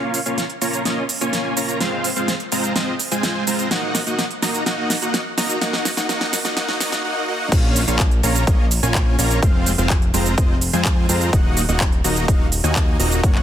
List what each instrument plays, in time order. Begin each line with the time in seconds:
Already playing: supersaw synth A#3 C#4 F4 C#5 F5
0.14 open hi-hat, shaker
0.26 supersaw synth A#3 C#4 F4 C#5 F5, closed hi-hat, shaker
0.38 snare, closed hi-hat, shaker
0.50 closed hi-hat
0.61 supersaw synth A#3 C#4 F4 C#5 A#5, open hi-hat, shaker
0.73 closed hi-hat, shaker
0.85 supersaw synth A#3 C#4 F4 C#5 D#5, snare, closed hi-hat, shaker
1.09 open hi-hat, shaker
1.21 supersaw synth A#3 C#4 F4 C#5 G#5, closed hi-hat, shaker
1.33 snare, closed hi-hat, shaker
1.57 supersaw synth A#3 C#4 F4 C#5 A#5, open hi-hat, shaker
1.69 closed hi-hat, shaker
1.80 supersaw synth G#3 C4 F4 C5 F5, snare, closed hi-hat, shaker
2.04 open hi-hat, shaker
2.16 supersaw synth G#3 C4 F4 C5 F5, closed hi-hat, shaker
2.28 snare, closed hi-hat, shaker
2.40 closed hi-hat
2.52 supersaw synth G#3 C4 F4 C5 A#5, open hi-hat, shaker
2.64 closed hi-hat, shaker
2.76 supersaw synth G#3 C4 F4 C5 D#5, snare, closed hi-hat, shaker
2.99 open hi-hat, shaker
3.11 supersaw synth G#3 C4 F4 C5 G#5, closed hi-hat, shaker
3.23 snare, closed hi-hat, shaker
3.47 supersaw synth G#3 C4 F4 C5 A#5, open hi-hat, shaker
3.59 closed hi-hat, shaker
3.71 supersaw synth A#3 D#4 F#4 D#5 F#5, snare, closed hi-hat, shaker
3.95 snare, open hi-hat, shaker
4.07 supersaw synth A#3 D#4 F#4 D#5 F#5, closed hi-hat, shaker
4.19 snare, closed hi-hat, shaker
4.31 closed hi-hat
4.42 supersaw synth A#3 D#4 F#4 D#5 A#5, snare, open hi-hat, shaker
4.54 closed hi-hat, shaker
4.66 supersaw synth A#3 D#4 F#4 D#5 F#5, snare, closed hi-hat, shaker
4.90 snare, open hi-hat, shaker
5.02 supersaw synth A#3 D#4 F#4 D#5 F#5, closed hi-hat, shaker
5.14 snare, closed hi-hat, shaker
5.38 supersaw synth A#3 D#4 F#4 D#5 A#5, snare, open hi-hat, shaker
5.50 closed hi-hat, shaker
5.61 supersaw synth A#3 D#4 F#4 D#5 F#5, snare, closed hi-hat, shaker
5.73 snare
5.85 snare, open hi-hat, shaker
5.97 supersaw synth A#3 D#4 F#4 D#5 F#5, snare, closed hi-hat, shaker
6.09 supersaw synth A#3 D#4 F#4 D#5 F#5, snare, closed hi-hat, shaker
6.21 snare, closed hi-hat
6.33 snare, open hi-hat, shaker
6.45 supersaw synth A#3 D#4 F#4 D#5 F#5, snare, closed hi-hat, shaker
6.57 supersaw synth A#3 D#4 F#4 D#5 F#5, snare, closed hi-hat, shaker
6.69 snare
6.80 supersaw synth A#3 D#4 F#4 D#5 F#5, snare, open hi-hat, shaker
6.92 snare, closed hi-hat, shaker
7.04 supersaw synth A#3 D#4 F#4 D#5 F#5
7.28 supersaw synth A#3 D#4 F#4 D#5 F#5
7.52 analog synth bass A#1, supersaw synth A#3 C#4 F4 C#5 F5, kick, closed hi-hat, crash, shaker
7.76 open hi-hat, shaker
7.88 analog synth bass A#1, supersaw synth A#3 C#4 F4 C#5 F5, closed hi-hat, shaker
7.99 kick, clap, closed hi-hat, shaker
8.11 closed hi-hat
8.23 analog synth bass A#1, supersaw synth A#3 C#4 F4 C#5 A#5, open hi-hat, shaker
8.35 closed hi-hat, shaker
8.47 analog synth bass A#1, supersaw synth A#3 C#4 F4 C#5 D#5, kick, closed hi-hat, shaker
8.71 open hi-hat, shaker
8.83 analog synth bass A#1, supersaw synth A#3 C#4 F4 C#5 G#5, closed hi-hat, shaker
8.95 kick, clap, closed hi-hat, shaker
9.19 analog synth bass A#1, supersaw synth A#3 C#4 F4 C#5 A#5, open hi-hat, shaker
9.31 closed hi-hat, shaker
9.42 analog synth bass F1, supersaw synth G#3 C4 F4 C5 F5, kick, closed hi-hat, shaker
9.66 open hi-hat, shaker
9.78 analog synth bass F1, supersaw synth G#3 C4 F4 C5 F5, closed hi-hat, shaker
9.90 kick, clap, closed hi-hat, shaker
10.02 closed hi-hat
10.14 analog synth bass F1, supersaw synth G#3 C4 F4 C5 A#5, open hi-hat, shaker
10.26 closed hi-hat, shaker
10.38 supersaw synth G#3 C4 F4 C5 D#5, kick, closed hi-hat, shaker
10.61 open hi-hat, shaker
10.73 analog synth bass F2, supersaw synth G#3 C4 F4 C5 G#5, closed hi-hat, shaker
10.85 kick, clap, closed hi-hat, shaker
11.09 analog synth bass F2, supersaw synth G#3 C4 F4 C5 A#5, open hi-hat, shaker
11.21 closed hi-hat, shaker
11.33 analog synth bass D#1, supersaw synth A#3 D#4 F#4 D#5 F#5, kick, closed hi-hat, shaker
11.57 open hi-hat, shaker
11.69 analog synth bass D#1, supersaw synth A#3 D#4 F#4 D#5 F#5, closed hi-hat, shaker
11.80 kick, clap, closed hi-hat, shaker
11.92 closed hi-hat
12.04 analog synth bass D#1, supersaw synth A#3 D#4 F#4 D#5 A#5, open hi-hat, shaker
12.16 closed hi-hat, shaker
12.28 analog synth bass D#1, supersaw synth A#3 D#4 F#4 D#5 F5, kick, closed hi-hat, shaker
12.52 open hi-hat, shaker
12.64 analog synth bass D#2, supersaw synth A#3 D#4 F#4 D#5 G#5, closed hi-hat, shaker
12.76 kick, clap, closed hi-hat, shaker
13.00 analog synth bass D#1, supersaw synth A#3 D#4 F#4 D#5 A#5, open hi-hat, shaker
13.12 closed hi-hat, shaker
13.23 analog synth bass F#1, supersaw synth A#3 C#4 F#4 C#5 F#5, kick, closed hi-hat, shaker
13.35 clap